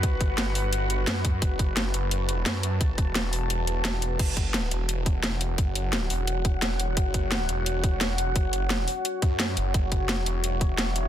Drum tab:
CC |--------|--------|--------|x-------|
HH |xxxoxxxx|xxxxxxxx|xxxoxxxx|xxxxxxxx|
SD |--o---o-|--o---o-|--o---o-|--o---o-|
BD |oo-----o|oo------|oo------|oo---o--|

CC |--------|--------|--------|--------|
HH |xxxoxxxx|xxxxxxxx|xxxoxxxx|xxxxxxxx|
SD |--o---o-|--o---o-|--o---o-|--o---o-|
BD |o----o--|oo---o--|o----o--|oo---o--|